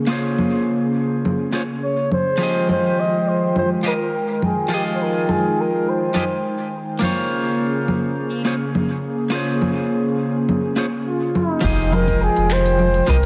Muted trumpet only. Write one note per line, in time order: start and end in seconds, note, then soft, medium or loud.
1.84 2.10 C#5 medium
2.13 2.66 C5 medium
2.71 3.01 C5 medium
2.99 3.30 D#5 medium
3.28 3.57 C5 medium
3.57 3.70 C5 medium
3.87 4.40 A#4 medium
4.44 4.70 G#4 medium
4.73 4.83 G4 medium
4.95 5.04 C5 medium
5.02 5.33 A#4 medium
5.31 5.62 G#4 medium
5.61 5.91 A#4 medium
5.89 6.75 C5 medium
11.07 11.39 F4 medium
11.37 11.96 D#4 medium
11.95 12.23 A#4 loud
12.23 12.54 G#4 loud
12.52 13.11 C5 loud
13.09 13.26 A#4 loud